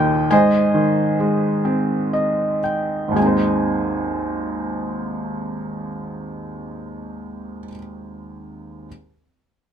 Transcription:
0.00 0.28 D#2 soft
0.00 0.29 A#2 soft
0.00 0.30 D#3 soft
0.00 0.27 G4 soft
0.00 0.27 A#4 soft
0.00 0.33 D#5 medium
0.00 0.32 G5 medium
0.31 3.13 G#2 medium
0.31 2.60 C5 medium
0.31 2.12 D#5 medium
0.31 2.59 G#5 medium
0.74 2.60 D#3 soft
1.20 3.14 G#3 soft
1.65 3.13 C4 soft
2.13 2.60 D#5 soft
2.64 3.13 G5 soft
3.08 7.59 G#1 soft
3.08 7.63 D#2 soft
3.15 7.67 G#3 soft
3.15 7.71 C4 soft
3.15 7.68 G#5 soft
3.22 7.74 D#4 soft
3.22 7.77 C5 soft

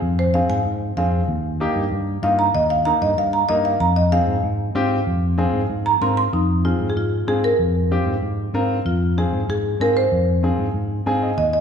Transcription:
0.02 0.40 F2 loud
0.19 0.34 C5 medium
0.34 0.56 C4 medium
0.34 0.56 F4 medium
0.34 0.57 G#4 medium
0.34 0.49 F5 medium
0.50 0.62 G#2 medium
0.50 0.96 G#5 medium
0.65 0.91 G#2 medium
0.97 1.22 F2 medium
0.97 1.19 C4 medium
0.97 1.20 F4 medium
0.97 1.20 G#4 medium
0.97 1.89 F5 medium
1.28 1.66 D#2 medium
1.60 1.82 A#3 medium
1.60 1.83 D#4 medium
1.60 1.83 G4 medium
1.76 1.88 G2 medium
1.91 2.17 G2 medium
2.23 2.48 G2 medium
2.23 2.45 A#3 medium
2.23 2.45 D#4 medium
2.23 2.46 F4 medium
2.23 2.38 F5 medium
2.39 2.54 A#5 medium
2.54 2.92 D#2 medium
2.54 2.70 D#5 loud
2.70 2.86 F5 medium
2.85 3.08 A#3 medium
2.85 3.08 D#4 medium
2.85 3.09 A#4 medium
2.85 3.01 A#5 medium
3.02 3.14 G2 medium
3.02 3.17 D#5 medium
3.17 3.43 G2 medium
3.17 3.33 F5 medium
3.33 3.49 A#5 medium
3.49 3.75 G2 medium
3.49 3.71 A#3 medium
3.49 3.71 D#4 medium
3.49 3.72 A#4 medium
3.49 3.64 D#5 loud
3.65 3.80 F5 medium
3.80 4.18 F2 medium
3.80 3.96 A#5 medium
3.96 4.12 D#5 medium
4.12 4.34 C4 medium
4.12 4.34 F4 medium
4.12 4.34 G#4 medium
4.12 4.73 F5 loud
4.27 4.40 G#2 medium
4.43 4.69 G#2 medium
4.75 5.00 G#2 medium
4.75 4.97 C4 medium
4.75 4.97 F4 medium
4.75 4.98 G4 loud
5.07 5.45 F2 medium
5.38 5.60 C4 medium
5.38 5.60 F4 medium
5.38 5.61 G#4 medium
5.54 5.66 G#2 loud
5.70 5.95 G#2 loud
5.86 6.01 A#5 loud
6.01 6.27 G#2 medium
6.01 6.24 C4 medium
6.01 6.24 F4 medium
6.01 6.24 A#4 medium
6.01 6.16 C6 medium
6.17 6.33 C6 loud
6.33 6.71 F2 medium
6.33 6.63 D#4 medium
6.64 6.87 C4 medium
6.64 6.87 F4 medium
6.64 6.90 F4 medium
6.64 6.87 G#4 medium
6.81 6.93 G#2 medium
6.90 6.96 G#4 medium
6.96 7.21 G#2 medium
6.96 7.26 F4 medium
7.27 7.53 G#2 medium
7.27 7.50 C4 medium
7.27 7.50 F4 medium
7.27 7.35 G#4 medium
7.27 7.50 G#4 medium
7.44 8.03 A#4 medium
7.59 7.97 F2 medium
7.91 8.13 C4 medium
7.91 8.13 F4 medium
7.91 8.13 G4 medium
8.06 8.19 G#2 medium
8.22 8.48 G#2 medium
8.53 8.79 G#2 medium
8.53 8.76 C4 medium
8.53 8.76 F4 medium
8.53 8.76 A#4 medium
8.85 9.23 F2 loud
8.85 9.15 F4 medium
9.17 9.39 C4 medium
9.17 9.39 F4 medium
9.17 9.47 G#4 medium
9.17 9.40 G#4 medium
9.33 9.45 G#2 medium
9.49 9.74 G#2 medium
9.49 9.78 G#4 medium
9.80 10.05 G#2 medium
9.80 10.02 C4 medium
9.80 10.02 F4 medium
9.80 10.03 G#4 medium
9.80 9.88 A#4 loud
9.97 10.55 C5 medium
10.12 10.49 F2 medium
10.43 10.65 C4 medium
10.43 10.65 F4 medium
10.43 10.65 G#4 medium
10.58 10.71 G#2 medium
10.74 10.99 G#2 medium
11.06 11.31 G#2 medium
11.06 11.28 C4 medium
11.06 11.28 F4 medium
11.06 11.29 G#4 medium
11.06 11.21 G#5 medium
11.23 11.37 D#5 medium
11.37 11.61 D#2 medium
11.37 11.45 D#5 loud
11.53 11.61 D#5 loud

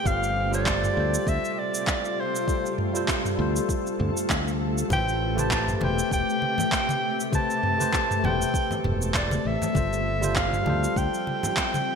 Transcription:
0.00 0.48 G3 medium
0.00 2.44 G4 medium
0.05 0.88 G1 loud
0.05 4.86 C3 medium
0.05 11.95 A3 medium
0.05 0.48 F4 medium
0.05 4.86 F4 medium
0.05 0.49 A4 medium
0.05 0.49 C5 medium
0.05 0.54 F5 loud
0.05 kick loud
0.05 shaker medium
0.23 shaker soft
0.51 0.63 G3 loud
0.51 0.63 F4 medium
0.51 0.64 A4 medium
0.51 0.64 C5 loud
0.51 1.30 D5 loud
0.51 shaker medium
0.66 kick loud
0.66 clap loud
0.66 shaker medium
0.84 mid tom medium
0.84 shaker soft
0.93 1.16 D2 loud
0.93 2.43 G3 medium
0.93 2.44 F4 medium
0.97 2.45 A4 medium
0.97 2.46 C5 medium
1.14 shaker medium
1.27 1.37 D2 medium
1.27 1.52 E5 loud
1.27 kick loud
1.27 shaker medium
1.45 shaker soft
1.52 1.60 E5 medium
1.59 2.22 D5 loud
1.75 shaker medium
1.87 kick loud
1.87 clap loud
1.87 shaker medium
2.05 shaker soft
2.20 2.80 C5 medium
2.35 shaker medium
2.46 2.90 G3 medium
2.46 2.91 F4 medium
2.46 4.88 A4 medium
2.46 2.91 A4 medium
2.46 2.92 C5 medium
2.46 kick loud
2.46 shaker medium
2.66 shaker soft
2.78 mid tom medium
2.93 3.05 G3 loud
2.93 3.05 F4 medium
2.93 3.06 A4 medium
2.93 3.07 C5 loud
2.93 shaker medium
3.08 kick loud
3.08 clap loud
3.08 shaker medium
3.25 mid tom medium
3.25 shaker soft
3.35 3.58 D2 medium
3.35 4.85 G3 medium
3.35 4.86 F4 medium
3.40 4.88 A4 medium
3.40 4.89 C5 medium
3.56 shaker medium
3.69 kick loud
3.69 shaker medium
3.87 shaker soft
3.99 4.10 D2 loud
3.99 mid tom medium
4.17 shaker medium
4.30 4.82 D2 medium
4.30 kick loud
4.30 clap loud
4.30 shaker medium
4.48 shaker soft
4.78 shaker medium
4.88 5.73 A1 loud
4.88 9.71 C3 medium
4.88 5.32 A3 medium
4.88 5.33 G4 medium
4.88 7.30 G4 loud
4.88 5.34 B4 medium
4.88 5.34 C5 medium
4.88 kick loud
4.88 high conga loud
4.88 shaker medium
4.93 5.41 G5 loud
5.08 shaker soft
5.36 5.47 A3 medium
5.36 5.48 G4 medium
5.36 5.48 B4 medium
5.36 5.49 C5 loud
5.36 high conga medium
5.36 shaker medium
5.40 5.52 A5 loud
5.51 5.75 A5 loud
5.51 kick loud
5.51 clap loud
5.51 shaker medium
5.68 mid tom medium
5.68 shaker soft
5.77 7.28 A3 medium
5.77 7.29 G4 medium
5.77 5.85 A5 medium
5.81 6.01 E1 loud
5.81 7.30 B4 medium
5.81 7.31 C5 medium
5.81 6.13 G5 loud
5.81 high conga medium
5.81 low conga medium
5.99 shaker medium
6.11 6.22 E1 medium
6.11 7.30 G5 loud
6.11 kick loud
6.11 shaker medium
6.30 shaker soft
6.42 high conga medium
6.58 low conga medium
6.58 shaker medium
6.72 kick loud
6.72 clap loud
6.72 shaker medium
6.89 high conga medium
6.89 shaker soft
7.20 shaker medium
7.31 7.75 A3 medium
7.31 7.76 G4 medium
7.31 9.73 A4 medium
7.31 7.76 B4 medium
7.31 7.77 C5 medium
7.31 kick loud
7.31 high conga medium
7.31 shaker medium
7.35 8.26 A5 loud
7.50 shaker soft
7.63 mid tom medium
7.78 7.90 A3 loud
7.78 7.90 G4 medium
7.78 7.91 B4 medium
7.78 7.91 C5 loud
7.78 high conga medium
7.78 shaker medium
7.93 kick loud
7.93 clap medium
7.93 shaker medium
8.11 mid tom medium
8.11 shaker soft
8.20 8.43 E1 medium
8.20 9.70 A3 medium
8.20 9.71 G4 medium
8.24 9.73 B4 medium
8.24 9.74 C5 medium
8.24 8.89 G5 loud
8.24 high conga medium
8.24 low conga medium
8.42 shaker medium
8.54 kick loud
8.54 shaker medium
8.71 low conga medium
8.71 shaker soft
8.84 9.37 E1 loud
8.84 mid tom medium
8.84 high conga medium
9.02 shaker medium
9.14 9.48 D5 medium
9.14 kick medium
9.14 clap loud
9.14 shaker medium
9.31 high conga medium
9.31 shaker soft
9.45 9.55 A1 medium
9.45 10.39 E5 loud
9.62 low conga medium
9.62 shaker medium
9.73 10.58 G1 medium
9.73 11.95 F3 medium
9.73 10.18 G3 medium
9.73 11.95 C4 medium
9.73 10.18 F4 medium
9.73 11.95 G4 medium
9.73 10.19 A4 medium
9.73 10.19 C5 medium
9.73 kick loud
9.73 high conga medium
9.73 shaker medium
9.93 shaker soft
10.21 10.32 G3 medium
10.21 10.33 F4 medium
10.21 10.33 A4 medium
10.21 10.34 C5 loud
10.21 high conga medium
10.21 shaker medium
10.36 10.99 F5 loud
10.36 kick loud
10.36 clap loud
10.36 shaker medium
10.53 mid tom medium
10.53 shaker soft
10.62 10.86 D2 medium
10.62 11.95 G3 medium
10.62 11.95 F4 medium
10.62 high conga medium
10.62 low conga medium
10.67 11.95 A4 medium
10.67 11.95 C5 medium
10.84 shaker medium
10.96 11.06 D2 medium
10.96 11.95 G5 loud
10.96 kick loud
10.96 shaker medium
11.14 shaker soft
11.27 high conga medium
11.43 low conga medium
11.43 shaker medium
11.57 kick medium
11.57 clap loud
11.57 shaker medium
11.74 high conga medium
11.74 shaker soft

